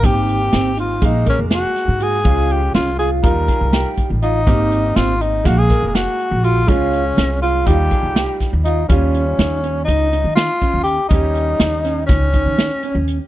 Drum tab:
HH |xxxxxxxxx|xxxxxxxxx|xxxxxxxxx|xxxxxxxxx|
SD |--o---oo-|--o---o--|--o-o-o--|--o---oo-|
BD |o---oo---|o---oo-o-|o---oo---|o---oo-o-|

HH |xxxxxxxxx|xxxxxxxxx|
SD |--o---o--|--ooo-o--|
BD |o------o-|o---oo---|